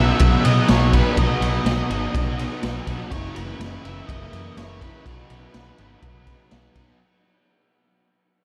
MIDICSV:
0, 0, Header, 1, 5, 480
1, 0, Start_track
1, 0, Key_signature, 5, "major"
1, 0, Tempo, 485437
1, 1157, Time_signature, 4, 2, 24, 8
1, 8348, End_track
2, 0, Start_track
2, 0, Title_t, "Lead electric guitar"
2, 0, Program_c, 0, 29
2, 0, Note_on_c, 0, 76, 107
2, 439, Note_off_c, 0, 76, 0
2, 443, Note_on_c, 0, 75, 93
2, 686, Note_off_c, 0, 75, 0
2, 690, Note_on_c, 0, 73, 101
2, 907, Note_off_c, 0, 73, 0
2, 929, Note_on_c, 0, 71, 86
2, 1169, Note_off_c, 0, 71, 0
2, 1171, Note_on_c, 0, 75, 98
2, 2563, Note_off_c, 0, 75, 0
2, 3076, Note_on_c, 0, 73, 117
2, 3311, Note_on_c, 0, 71, 105
2, 3322, Note_off_c, 0, 73, 0
2, 3801, Note_on_c, 0, 76, 108
2, 3807, Note_off_c, 0, 71, 0
2, 4022, Note_off_c, 0, 76, 0
2, 4026, Note_on_c, 0, 75, 112
2, 4518, Note_off_c, 0, 75, 0
2, 4522, Note_on_c, 0, 73, 106
2, 4744, Note_on_c, 0, 71, 90
2, 4766, Note_off_c, 0, 73, 0
2, 6392, Note_off_c, 0, 71, 0
2, 8348, End_track
3, 0, Start_track
3, 0, Title_t, "Overdriven electric guitar"
3, 0, Program_c, 1, 29
3, 0, Note_on_c, 1, 47, 81
3, 0, Note_on_c, 1, 54, 67
3, 0, Note_on_c, 1, 59, 74
3, 0, Note_on_c, 1, 63, 76
3, 672, Note_off_c, 1, 47, 0
3, 676, Note_on_c, 1, 47, 87
3, 686, Note_off_c, 1, 54, 0
3, 689, Note_off_c, 1, 63, 0
3, 690, Note_off_c, 1, 59, 0
3, 690, Note_on_c, 1, 54, 94
3, 694, Note_on_c, 1, 59, 91
3, 701, Note_on_c, 1, 63, 93
3, 918, Note_off_c, 1, 63, 0
3, 930, Note_on_c, 1, 63, 77
3, 939, Note_off_c, 1, 59, 0
3, 943, Note_on_c, 1, 59, 68
3, 950, Note_off_c, 1, 54, 0
3, 954, Note_on_c, 1, 54, 63
3, 1156, Note_off_c, 1, 47, 0
3, 1169, Note_on_c, 1, 47, 102
3, 1174, Note_off_c, 1, 54, 0
3, 1176, Note_off_c, 1, 63, 0
3, 1178, Note_on_c, 1, 54, 90
3, 1179, Note_off_c, 1, 59, 0
3, 1183, Note_on_c, 1, 59, 103
3, 1188, Note_on_c, 1, 63, 103
3, 1614, Note_off_c, 1, 47, 0
3, 1626, Note_on_c, 1, 47, 88
3, 1632, Note_off_c, 1, 54, 0
3, 1636, Note_on_c, 1, 54, 81
3, 1639, Note_off_c, 1, 59, 0
3, 1642, Note_off_c, 1, 63, 0
3, 1643, Note_on_c, 1, 59, 97
3, 1654, Note_on_c, 1, 63, 97
3, 1864, Note_off_c, 1, 63, 0
3, 1876, Note_on_c, 1, 63, 88
3, 1880, Note_off_c, 1, 59, 0
3, 1883, Note_on_c, 1, 59, 78
3, 1896, Note_off_c, 1, 54, 0
3, 1900, Note_on_c, 1, 54, 69
3, 2110, Note_off_c, 1, 47, 0
3, 2600, Note_on_c, 1, 47, 92
3, 2603, Note_off_c, 1, 54, 0
3, 2607, Note_off_c, 1, 59, 0
3, 2607, Note_on_c, 1, 54, 92
3, 2610, Note_off_c, 1, 63, 0
3, 2611, Note_on_c, 1, 59, 88
3, 2622, Note_on_c, 1, 63, 92
3, 2829, Note_off_c, 1, 63, 0
3, 2841, Note_on_c, 1, 63, 74
3, 2848, Note_off_c, 1, 59, 0
3, 2852, Note_on_c, 1, 59, 69
3, 2860, Note_off_c, 1, 54, 0
3, 2864, Note_on_c, 1, 54, 67
3, 3063, Note_off_c, 1, 47, 0
3, 3063, Note_off_c, 1, 63, 0
3, 3071, Note_on_c, 1, 42, 95
3, 3072, Note_on_c, 1, 49, 98
3, 3080, Note_off_c, 1, 54, 0
3, 3080, Note_off_c, 1, 59, 0
3, 3084, Note_on_c, 1, 52, 105
3, 3084, Note_on_c, 1, 58, 105
3, 3093, Note_on_c, 1, 64, 119
3, 3537, Note_off_c, 1, 49, 0
3, 3547, Note_off_c, 1, 52, 0
3, 3548, Note_on_c, 1, 49, 85
3, 3549, Note_off_c, 1, 58, 0
3, 3555, Note_off_c, 1, 64, 0
3, 3558, Note_on_c, 1, 52, 89
3, 3561, Note_on_c, 1, 58, 87
3, 3567, Note_on_c, 1, 64, 86
3, 3782, Note_off_c, 1, 64, 0
3, 3793, Note_off_c, 1, 42, 0
3, 3794, Note_on_c, 1, 64, 84
3, 3796, Note_off_c, 1, 58, 0
3, 3803, Note_off_c, 1, 52, 0
3, 3808, Note_on_c, 1, 58, 74
3, 3814, Note_on_c, 1, 52, 66
3, 4032, Note_off_c, 1, 49, 0
3, 4523, Note_off_c, 1, 52, 0
3, 4527, Note_on_c, 1, 49, 83
3, 4529, Note_off_c, 1, 58, 0
3, 4535, Note_on_c, 1, 52, 86
3, 4540, Note_off_c, 1, 64, 0
3, 4541, Note_on_c, 1, 58, 89
3, 4552, Note_on_c, 1, 64, 97
3, 4751, Note_off_c, 1, 64, 0
3, 4762, Note_off_c, 1, 58, 0
3, 4763, Note_on_c, 1, 64, 77
3, 4773, Note_off_c, 1, 52, 0
3, 4774, Note_on_c, 1, 58, 70
3, 4785, Note_on_c, 1, 52, 70
3, 4985, Note_off_c, 1, 64, 0
3, 4987, Note_off_c, 1, 49, 0
3, 4990, Note_off_c, 1, 58, 0
3, 4996, Note_off_c, 1, 52, 0
3, 4996, Note_on_c, 1, 47, 96
3, 5002, Note_on_c, 1, 54, 98
3, 5015, Note_on_c, 1, 59, 110
3, 5017, Note_on_c, 1, 63, 113
3, 5464, Note_off_c, 1, 47, 0
3, 5475, Note_off_c, 1, 54, 0
3, 5476, Note_on_c, 1, 47, 80
3, 5483, Note_off_c, 1, 59, 0
3, 5487, Note_on_c, 1, 54, 83
3, 5491, Note_off_c, 1, 63, 0
3, 5495, Note_on_c, 1, 59, 85
3, 5503, Note_on_c, 1, 63, 93
3, 5716, Note_off_c, 1, 63, 0
3, 5728, Note_off_c, 1, 59, 0
3, 5728, Note_on_c, 1, 63, 76
3, 5735, Note_off_c, 1, 54, 0
3, 5739, Note_on_c, 1, 59, 73
3, 5747, Note_on_c, 1, 54, 66
3, 5957, Note_off_c, 1, 47, 0
3, 6439, Note_off_c, 1, 54, 0
3, 6442, Note_off_c, 1, 59, 0
3, 6443, Note_on_c, 1, 47, 80
3, 6450, Note_on_c, 1, 54, 89
3, 6454, Note_on_c, 1, 59, 86
3, 6456, Note_off_c, 1, 63, 0
3, 6468, Note_on_c, 1, 63, 93
3, 6666, Note_off_c, 1, 63, 0
3, 6677, Note_off_c, 1, 59, 0
3, 6678, Note_on_c, 1, 63, 70
3, 6689, Note_on_c, 1, 59, 71
3, 6690, Note_off_c, 1, 54, 0
3, 6702, Note_on_c, 1, 54, 61
3, 6904, Note_off_c, 1, 63, 0
3, 6907, Note_off_c, 1, 47, 0
3, 6909, Note_off_c, 1, 59, 0
3, 6916, Note_off_c, 1, 54, 0
3, 8348, End_track
4, 0, Start_track
4, 0, Title_t, "Fingered electric bass"
4, 0, Program_c, 2, 33
4, 0, Note_on_c, 2, 35, 86
4, 112, Note_off_c, 2, 35, 0
4, 199, Note_on_c, 2, 35, 95
4, 355, Note_off_c, 2, 35, 0
4, 445, Note_on_c, 2, 47, 97
4, 599, Note_off_c, 2, 47, 0
4, 685, Note_on_c, 2, 35, 98
4, 995, Note_off_c, 2, 35, 0
4, 1157, Note_on_c, 2, 35, 108
4, 1313, Note_off_c, 2, 35, 0
4, 1392, Note_on_c, 2, 35, 88
4, 1550, Note_off_c, 2, 35, 0
4, 1626, Note_on_c, 2, 35, 93
4, 1786, Note_off_c, 2, 35, 0
4, 1874, Note_on_c, 2, 32, 86
4, 2031, Note_off_c, 2, 32, 0
4, 2124, Note_on_c, 2, 35, 95
4, 2434, Note_off_c, 2, 35, 0
4, 2601, Note_on_c, 2, 35, 99
4, 2755, Note_off_c, 2, 35, 0
4, 2838, Note_on_c, 2, 35, 94
4, 2993, Note_off_c, 2, 35, 0
4, 3081, Note_on_c, 2, 30, 101
4, 3236, Note_off_c, 2, 30, 0
4, 3321, Note_on_c, 2, 30, 91
4, 3476, Note_off_c, 2, 30, 0
4, 3557, Note_on_c, 2, 30, 99
4, 3713, Note_off_c, 2, 30, 0
4, 3802, Note_on_c, 2, 30, 90
4, 3956, Note_off_c, 2, 30, 0
4, 4043, Note_on_c, 2, 30, 90
4, 4197, Note_off_c, 2, 30, 0
4, 4277, Note_on_c, 2, 42, 100
4, 4433, Note_off_c, 2, 42, 0
4, 4515, Note_on_c, 2, 30, 89
4, 4829, Note_off_c, 2, 30, 0
4, 5003, Note_on_c, 2, 35, 107
4, 5157, Note_off_c, 2, 35, 0
4, 5238, Note_on_c, 2, 35, 93
4, 5394, Note_off_c, 2, 35, 0
4, 5479, Note_on_c, 2, 35, 85
4, 5635, Note_off_c, 2, 35, 0
4, 5722, Note_on_c, 2, 32, 90
4, 5877, Note_off_c, 2, 32, 0
4, 5957, Note_on_c, 2, 35, 88
4, 6271, Note_off_c, 2, 35, 0
4, 6447, Note_on_c, 2, 35, 90
4, 6601, Note_off_c, 2, 35, 0
4, 6680, Note_on_c, 2, 35, 90
4, 6836, Note_off_c, 2, 35, 0
4, 8348, End_track
5, 0, Start_track
5, 0, Title_t, "Drums"
5, 192, Note_on_c, 9, 51, 115
5, 202, Note_on_c, 9, 36, 121
5, 291, Note_off_c, 9, 51, 0
5, 300, Note_off_c, 9, 36, 0
5, 442, Note_on_c, 9, 51, 88
5, 541, Note_off_c, 9, 51, 0
5, 675, Note_on_c, 9, 51, 101
5, 680, Note_on_c, 9, 38, 117
5, 774, Note_off_c, 9, 51, 0
5, 779, Note_off_c, 9, 38, 0
5, 922, Note_on_c, 9, 51, 80
5, 923, Note_on_c, 9, 36, 78
5, 1021, Note_off_c, 9, 51, 0
5, 1022, Note_off_c, 9, 36, 0
5, 1160, Note_on_c, 9, 51, 104
5, 1161, Note_on_c, 9, 36, 113
5, 1259, Note_off_c, 9, 51, 0
5, 1260, Note_off_c, 9, 36, 0
5, 1405, Note_on_c, 9, 51, 83
5, 1504, Note_off_c, 9, 51, 0
5, 1641, Note_on_c, 9, 51, 107
5, 1646, Note_on_c, 9, 38, 123
5, 1739, Note_off_c, 9, 51, 0
5, 1744, Note_off_c, 9, 38, 0
5, 1884, Note_on_c, 9, 51, 81
5, 1983, Note_off_c, 9, 51, 0
5, 2123, Note_on_c, 9, 36, 121
5, 2128, Note_on_c, 9, 51, 113
5, 2221, Note_off_c, 9, 36, 0
5, 2227, Note_off_c, 9, 51, 0
5, 2366, Note_on_c, 9, 51, 81
5, 2464, Note_off_c, 9, 51, 0
5, 2598, Note_on_c, 9, 51, 107
5, 2603, Note_on_c, 9, 38, 121
5, 2697, Note_off_c, 9, 51, 0
5, 2702, Note_off_c, 9, 38, 0
5, 2840, Note_on_c, 9, 36, 82
5, 2840, Note_on_c, 9, 51, 85
5, 2939, Note_off_c, 9, 36, 0
5, 2939, Note_off_c, 9, 51, 0
5, 3081, Note_on_c, 9, 36, 118
5, 3082, Note_on_c, 9, 51, 119
5, 3179, Note_off_c, 9, 36, 0
5, 3180, Note_off_c, 9, 51, 0
5, 3322, Note_on_c, 9, 51, 93
5, 3421, Note_off_c, 9, 51, 0
5, 3565, Note_on_c, 9, 51, 121
5, 3570, Note_on_c, 9, 38, 119
5, 3664, Note_off_c, 9, 51, 0
5, 3669, Note_off_c, 9, 38, 0
5, 3807, Note_on_c, 9, 51, 82
5, 3906, Note_off_c, 9, 51, 0
5, 4043, Note_on_c, 9, 36, 121
5, 4048, Note_on_c, 9, 51, 117
5, 4142, Note_off_c, 9, 36, 0
5, 4146, Note_off_c, 9, 51, 0
5, 4282, Note_on_c, 9, 51, 82
5, 4381, Note_off_c, 9, 51, 0
5, 4521, Note_on_c, 9, 51, 116
5, 4526, Note_on_c, 9, 38, 112
5, 4620, Note_off_c, 9, 51, 0
5, 4625, Note_off_c, 9, 38, 0
5, 4761, Note_on_c, 9, 36, 86
5, 4766, Note_on_c, 9, 51, 78
5, 4860, Note_off_c, 9, 36, 0
5, 4864, Note_off_c, 9, 51, 0
5, 5002, Note_on_c, 9, 36, 112
5, 5006, Note_on_c, 9, 51, 102
5, 5100, Note_off_c, 9, 36, 0
5, 5105, Note_off_c, 9, 51, 0
5, 5240, Note_on_c, 9, 51, 88
5, 5339, Note_off_c, 9, 51, 0
5, 5478, Note_on_c, 9, 51, 112
5, 5482, Note_on_c, 9, 38, 115
5, 5576, Note_off_c, 9, 51, 0
5, 5581, Note_off_c, 9, 38, 0
5, 5718, Note_on_c, 9, 51, 77
5, 5817, Note_off_c, 9, 51, 0
5, 5957, Note_on_c, 9, 51, 112
5, 5959, Note_on_c, 9, 36, 120
5, 6056, Note_off_c, 9, 51, 0
5, 6057, Note_off_c, 9, 36, 0
5, 6198, Note_on_c, 9, 36, 81
5, 6198, Note_on_c, 9, 51, 79
5, 6297, Note_off_c, 9, 36, 0
5, 6297, Note_off_c, 9, 51, 0
5, 6438, Note_on_c, 9, 51, 102
5, 6443, Note_on_c, 9, 38, 118
5, 6537, Note_off_c, 9, 51, 0
5, 6542, Note_off_c, 9, 38, 0
5, 6564, Note_on_c, 9, 38, 33
5, 6663, Note_off_c, 9, 38, 0
5, 6680, Note_on_c, 9, 36, 84
5, 6680, Note_on_c, 9, 51, 84
5, 6778, Note_off_c, 9, 51, 0
5, 6779, Note_off_c, 9, 36, 0
5, 8348, End_track
0, 0, End_of_file